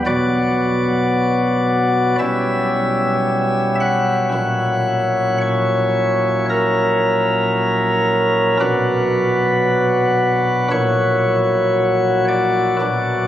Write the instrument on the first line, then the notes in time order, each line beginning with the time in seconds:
pipe organ
0.06 B1 B2 F#3 B3 F#4 D5
2.19 B1 B2 G3 C#4 E4 E5
3.80 F#5
4.33 A#1 A#2 F#3 C#4 E4
5.41 C#5
6.50 A#4
8.60 B1 B2 F#3 D4 F#4 B4
10.71 A#1 A#2 F#3 E4 F#4 C#5
12.28 D5
12.81 B1 B2 F#3 D4 F#4